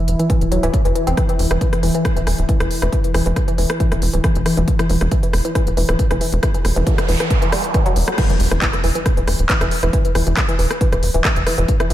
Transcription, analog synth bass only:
0.08 E1
0.41 D1
0.52 E1
0.63 D1
0.85 F#1
1.07 E1
1.39 E1
1.51 E1
1.83 E1
2.16 D1
2.27 E1
2.38 D1
2.60 E1
2.82 E1
3.14 E1
3.26 E1
3.58 E1
3.92 D1
4.02 E1
4.14 D1
4.35 E1
4.57 E1
4.90 E1
5.01 E1
5.33 E1
5.67 D1
5.77 E1
5.89 D1
6.11 E1
6.33 E1
6.65 E1
6.76 E1
7.09 E1
7.96 E1
8.40 E1
8.52 E1
8.84 E1
9.17 D1
9.28 E1
9.39 D1
9.61 E1
9.83 E1
10.15 E1
10.27 E1
10.59 E1
10.92 D1
11.03 E1
11.14 D1
11.36 E1
11.58 E1
11.90 E1

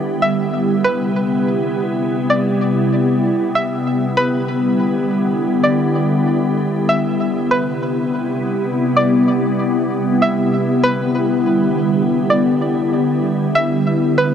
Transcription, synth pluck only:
0.22 E5
0.84 B4
2.30 D5
3.55 E5
4.17 B4
5.64 D5
6.89 E5
7.51 B4
8.97 D5
10.22 E5
10.83 B4
12.30 D5
13.55 E5
14.18 B4

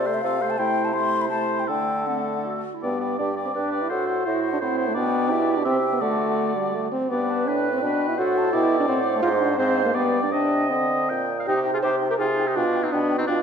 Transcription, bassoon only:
Already playing: C3
0.24 C3
0.59 C3
1.70 D3
2.84 G2
3.20 G2
3.55 G2
3.91 A2
4.27 A2
4.62 A2
4.97 B2
5.66 C3
6.02 D3
7.12 G2
7.48 A2
7.84 B2
8.19 A2
8.53 B2
8.88 A2
9.23 G#2
9.59 G#2
9.95 G2
10.33 C3
10.71 D3
11.10 A#2
11.48 C3
11.84 C3
12.21 C3
12.57 B2
12.93 B2
13.28 B2

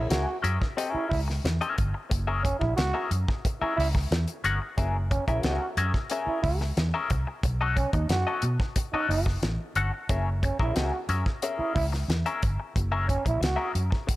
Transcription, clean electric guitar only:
0.10 C#4 G#4 A#4 E5
0.28 muted clean electric guitar stroke
0.42 C#4 G#4 A#4 E5
0.60 muted clean electric guitar stroke
0.77 C4 G4 A4 D#5
0.90 C#4 G#4 A#4 E5
1.28 muted clean electric guitar stroke
1.45 muted clean electric guitar stroke
1.61 C#4 G#4 A#4 E5
1.78 muted clean electric guitar stroke
1.94 muted clean electric guitar stroke
2.10 muted clean electric guitar stroke
2.27 C#4 G#4 A#4 E5
2.61 muted clean electric guitar stroke
2.78 muted clean electric guitar stroke
2.94 C#4 G#4 A#4 E5
3.12 muted clean electric guitar stroke
3.29 muted clean electric guitar stroke
3.46 muted clean electric guitar stroke
3.61 C#4 G#4 A#4 E5
3.78 muted clean electric guitar stroke
3.95 muted clean electric guitar stroke
4.12 muted clean electric guitar stroke
4.44 C#4 G#4 A#4 F#5
4.62 muted clean electric guitar stroke
4.77 C#4 G#4 A#4 E5
5.11 muted clean electric guitar stroke
5.28 C#4 G#4 A#4 E5
5.44 C#4 G#4 A#4 E5
5.62 muted clean electric guitar stroke
5.77 C#4 G#4 A#4 E5
5.94 muted clean electric guitar stroke
6.11 C#4 G#4 A#4 E5
6.61 muted clean electric guitar stroke
6.78 muted clean electric guitar stroke
6.94 C#4 G#4 A#4 E5
7.27 muted clean electric guitar stroke
7.45 muted clean electric guitar stroke
7.61 C#4 F#4 A4 D#5
7.78 muted clean electric guitar stroke
7.94 muted clean electric guitar stroke
8.11 muted clean electric guitar stroke
8.27 C#4 F#4 A4 D#5
8.44 muted clean electric guitar stroke
8.61 muted clean electric guitar stroke
8.77 muted clean electric guitar stroke
8.94 C#4 F#4 A4 D#5
9.26 muted clean electric guitar stroke
9.43 muted clean electric guitar stroke
9.76 C#4 F#4 A4 F#5
9.93 muted clean electric guitar stroke
10.09 C#4 G#4 A#4 E5
10.43 muted clean electric guitar stroke
10.60 C#4 G#4 A#4 E5
10.76 C#4 G#4 A#4 E5
10.93 muted clean electric guitar stroke
11.09 C#4 G#4 A#4 E5
11.26 muted clean electric guitar stroke
11.43 C#4 G#4 A#4 E5
11.76 muted clean electric guitar stroke
11.92 muted clean electric guitar stroke
12.10 muted clean electric guitar stroke
12.26 C#4 G#4 A#4 E5
12.60 muted clean electric guitar stroke
12.76 muted clean electric guitar stroke
12.92 C#4 G#4 A#4 E5
13.25 muted clean electric guitar stroke
13.40 muted clean electric guitar stroke
13.56 C#4 G#4 A#4 E5
13.73 muted clean electric guitar stroke
13.91 muted clean electric guitar stroke
14.07 muted clean electric guitar stroke

